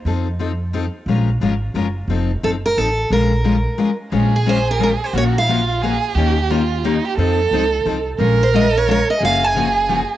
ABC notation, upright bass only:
X:1
M:3/4
L:1/8
Q:"Swing" 1/4=177
K:Bbm
V:1 name="Upright bass" clef=bass
F,,6 | B,,,2 A,,,2 G,,,2 | F,,,2 G,,,2 =A,,,2 | B,,,4 z2 |
B,,,6 | B,,,6 | E,,6 | F,,2 D,,2 C,,2 |
B,,,6 | G,,,6 |]